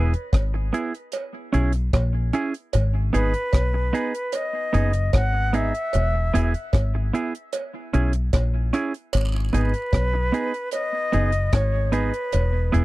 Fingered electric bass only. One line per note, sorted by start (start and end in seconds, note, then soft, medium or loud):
0.00 0.13 E1 medium
0.34 0.70 G#1 medium
1.55 1.91 B1 medium
1.94 2.30 A#1 loud
2.75 3.11 G#1 loud
3.15 3.33 G#1 medium
3.54 3.91 B1 medium
4.75 5.11 F#1 medium
5.14 5.71 G#1 loud
5.95 6.31 E1 loud
6.35 6.53 E1 medium
6.74 7.10 G#1 medium
7.95 8.31 B1 medium
8.34 8.70 A#1 loud
9.14 9.50 G#1 loud
9.54 9.73 G#1 medium
9.94 10.30 B1 medium
11.14 11.50 F#1 loud
11.54 12.10 G#1 loud
12.34 12.70 E1 loud
12.74 12.85 E1 medium